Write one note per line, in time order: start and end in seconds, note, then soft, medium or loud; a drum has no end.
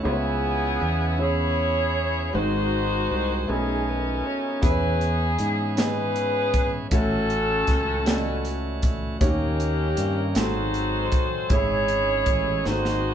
0.03 0.78 C#2 medium
0.03 1.15 C#3 medium
0.03 2.30 E3 medium
0.03 1.08 B3 medium
0.03 2.30 B3 medium
0.03 1.16 B3 medium
0.03 1.08 C#4 medium
0.03 2.30 C#4 soft
0.03 1.09 E4 medium
0.03 1.16 E4 medium
0.03 2.30 G#4 medium
0.03 1.09 G#4 medium
0.03 1.17 G#4 medium
0.03 0.11 C5 medium
0.12 1.12 C#5 medium
0.81 2.30 E2 medium
1.17 2.22 B3 medium
1.17 2.23 C#4 medium
1.17 2.23 E4 medium
1.17 2.31 E4 medium
1.17 2.23 G#4 medium
1.17 2.31 G#4 medium
1.17 2.24 C#5 medium
1.21 2.31 C#5 loud
2.33 3.07 G#1 loud
2.33 3.45 G#2 medium
2.33 3.47 D#3 medium
2.33 3.38 G#3 medium
2.33 3.48 G#3 medium
2.33 3.48 C4 medium
2.33 3.38 C4 medium
2.33 3.38 D#4 medium
2.33 3.45 D#4 medium
2.33 3.48 F#4 medium
2.33 3.38 F#4 medium
2.33 3.45 F#4 medium
2.33 3.39 C5 medium
2.33 3.49 C5 loud
3.11 3.46 C2 medium
3.47 4.21 B1 medium
3.47 4.59 B2 medium
3.47 4.63 D#3 medium
3.47 4.52 A3 medium
3.47 4.63 A3 medium
3.47 4.52 C#4 medium
3.47 4.60 C#4 medium
3.47 4.52 D#4 medium
3.47 4.60 D#4 medium
3.47 4.60 G#4 medium
3.47 4.53 G#4 medium
3.47 3.87 G#4 medium
3.47 4.53 B4 medium
3.87 4.25 B4 medium
4.25 4.63 C#5 medium
4.61 5.35 E2 loud
4.61 6.87 E3 soft
4.61 5.73 E3 medium
4.61 5.66 B3 medium
4.61 6.88 B3 medium
4.61 6.87 C#4 soft
4.61 5.66 C#4 medium
4.61 5.67 E4 medium
4.61 6.87 G#4 medium
4.61 5.74 G#4 medium
4.61 5.67 G#4 medium
4.61 5.35 B4 medium
4.61 4.70 B4 medium
4.61 kick medium
4.61 closed hi-hat medium
4.70 5.71 C#5 medium
5.01 closed hi-hat soft
5.39 6.88 G#2 medium
5.39 closed hi-hat medium
5.76 6.81 B3 medium
5.76 6.81 C#4 medium
5.76 6.81 E4 medium
5.76 6.81 G#4 medium
5.76 6.75 G#4 medium
5.76 6.75 B4 loud
5.76 6.82 D#5 medium
5.76 snare medium
5.76 closed hi-hat medium
6.16 closed hi-hat soft
6.54 kick medium
6.54 closed hi-hat medium
6.91 7.64 A1 medium
6.91 8.02 A2 medium
6.91 9.17 E3 medium
6.91 7.95 A3 medium
6.91 9.17 A3 medium
6.91 7.96 C#4 medium
6.91 9.17 C#4 soft
6.91 8.79 C#4 medium
6.91 7.96 E4 medium
6.91 6.98 F4 medium
6.91 8.79 F#4 medium
6.91 7.96 F#4 medium
6.91 8.83 A4 loud
6.91 7.96 C#5 medium
6.91 kick medium
6.91 closed hi-hat medium
6.98 9.20 F#4 medium
7.30 closed hi-hat soft
7.67 9.17 C#2 medium
7.67 kick medium
7.67 snare soft
7.67 closed hi-hat medium
8.05 9.10 A3 medium
8.05 9.10 C#4 medium
8.05 9.10 E4 medium
8.05 9.10 F#4 medium
8.05 8.13 D5 medium
8.05 snare loud
8.05 closed hi-hat medium
8.14 9.14 D#5 medium
8.45 closed hi-hat soft
8.82 kick medium
8.82 closed hi-hat medium
9.20 9.93 D#2 medium
9.20 10.31 D#3 medium
9.20 10.36 D#3 medium
9.20 10.24 A#3 medium
9.20 10.36 A#3 medium
9.20 10.33 A#3 medium
9.20 10.25 C#4 medium
9.20 10.36 C#4 soft
9.20 10.32 C#4 medium
9.20 10.25 D#4 medium
9.20 9.27 F#4 medium
9.20 10.25 G4 medium
9.20 10.32 G4 medium
9.20 10.25 C#5 medium
9.20 kick medium
9.20 closed hi-hat medium
9.27 10.39 G4 medium
9.60 closed hi-hat soft
9.97 10.33 G2 medium
9.97 closed hi-hat medium
10.35 11.08 G#1 medium
10.35 11.47 G#2 medium
10.35 11.50 F#3 medium
10.35 11.39 G#3 medium
10.35 11.47 G#3 medium
10.35 11.50 C4 medium
10.35 11.40 C4 medium
10.35 11.40 D#4 medium
10.35 11.47 D#4 medium
10.35 11.47 F#4 medium
10.35 11.40 F#4 medium
10.35 11.50 A4 medium
10.35 11.40 A4 medium
10.35 11.51 C5 medium
10.35 snare medium
10.35 closed hi-hat medium
10.74 closed hi-hat soft
11.12 kick medium
11.12 closed hi-hat medium
11.48 12.23 G#1 medium
11.48 12.61 G#2 medium
11.48 12.64 E3 medium
11.48 12.62 G#3 medium
11.48 12.64 C#4 medium
11.48 12.54 C#4 medium
11.48 12.55 E4 medium
11.48 12.62 E4 medium
11.48 12.64 G#4 medium
11.48 12.55 G#4 medium
11.48 12.62 G#4 medium
11.48 kick loud
11.48 closed hi-hat medium
11.53 12.66 C#5 loud
11.88 closed hi-hat medium
12.26 12.62 A1 medium
12.26 kick medium
12.26 closed hi-hat medium
12.64 13.14 G#1 medium
12.64 13.14 G#2 soft
12.64 13.14 D#3 medium
12.64 13.14 G#3 medium
12.64 13.14 C4 medium
12.64 13.14 D#4 medium
12.64 13.14 F#4 medium
12.64 12.72 A4 medium
12.64 13.14 C5 medium
12.64 snare soft
12.73 13.14 C5 medium
12.85 snare soft